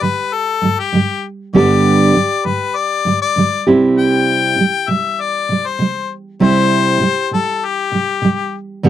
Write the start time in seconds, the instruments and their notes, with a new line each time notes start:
Already playing: steel-string acoustic guitar G4
0.01 steel-string acoustic guitar G2 D3 G3, harmonica B4
0.33 harmonica A4
0.62 steel-string acoustic guitar G2 D3 G3
0.79 harmonica G4
0.93 steel-string acoustic guitar G2 D3 G3
1.53 steel-string acoustic guitar G2 D3 G3 B3 D4 G4, harmonica D5
2.15 steel-string acoustic guitar G2 D3 G3
2.45 steel-string acoustic guitar G2 D3 G3, harmonica B4
2.76 harmonica D5
3.05 steel-string acoustic guitar G2 D3 G3
3.22 harmonica D5
3.36 steel-string acoustic guitar G2 D3 G3
3.67 steel-string acoustic guitar C3 G3 C4 E4 G4
3.99 harmonica G5
4.58 steel-string acoustic guitar C3 G3
4.88 steel-string acoustic guitar C3 G3, harmonica E5
5.21 harmonica D5
5.49 steel-string acoustic guitar C3 G3
5.67 harmonica C5
5.79 steel-string acoustic guitar C3 G3
6.40 steel-string acoustic guitar C3 G3 C4 E4 G4, harmonica C5
7.00 steel-string acoustic guitar C3 G3
7.31 steel-string acoustic guitar C3 G3, harmonica A4
7.65 harmonica G4
7.92 steel-string acoustic guitar C3 G3
8.22 steel-string acoustic guitar C3 G3
8.83 steel-string acoustic guitar G2 D3 G3 B3 D4 G4